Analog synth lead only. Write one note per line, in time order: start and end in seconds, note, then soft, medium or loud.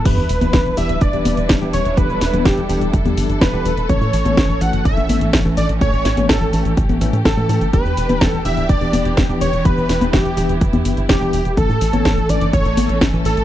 0.06 0.77 B4 loud
0.78 1.03 E5 loud
1.01 1.49 D5 loud
1.73 1.99 C#5 loud
1.97 2.47 B4 loud
2.45 2.93 G4 medium
3.41 3.86 B4 medium
3.89 4.63 C#5 loud
4.61 4.84 F#5 loud
4.85 5.30 E5 loud
5.57 5.68 D5 loud
5.81 6.26 C#5 loud
6.29 6.74 A4 medium
7.25 7.70 A4 medium
7.73 8.23 B4 loud
8.23 8.41 A4 loud
8.45 8.68 E5 loud
8.69 9.14 D5 loud
9.41 9.67 C#5 loud
9.65 10.13 B4 loud
10.13 10.58 G4 medium
11.10 11.54 G4 medium
11.58 12.31 A4 loud
12.29 12.53 D5 loud
12.54 12.98 C#5 loud
13.26 13.44 A4 loud